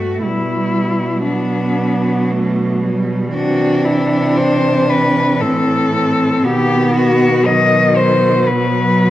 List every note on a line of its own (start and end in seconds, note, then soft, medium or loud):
0.00 0.20 G2 soft
0.00 0.25 A3 soft
0.00 0.25 A3 medium
0.00 0.22 F#4 medium
0.22 3.35 B2 medium
0.22 1.27 G3 soft
0.22 1.27 G3 medium
0.22 1.25 E4 medium
1.25 3.30 F#3 medium
1.25 2.33 B3 medium
1.25 2.78 D4 medium
2.31 2.84 A3 medium
2.83 3.34 G3 medium
3.33 5.42 C3 medium
3.33 6.40 E3 medium
3.33 5.43 D4 medium
3.33 3.86 F#4 medium
3.85 4.37 E4 medium
4.36 4.91 C5 medium
4.90 5.42 B4 medium
5.41 6.43 A2 medium
5.41 5.93 C4 medium
5.41 6.46 A4 medium
5.93 6.46 C4 medium
6.43 9.10 B2 medium
6.43 7.44 D#3 medium
6.43 7.48 B3 medium
6.43 6.95 G4 medium
6.96 7.47 F#4 medium
7.45 8.49 D#3 medium
7.45 8.45 F#3 medium
7.45 7.98 D#5 loud
7.96 8.49 C5 medium
8.47 9.10 F#3 medium
8.47 9.10 B4 medium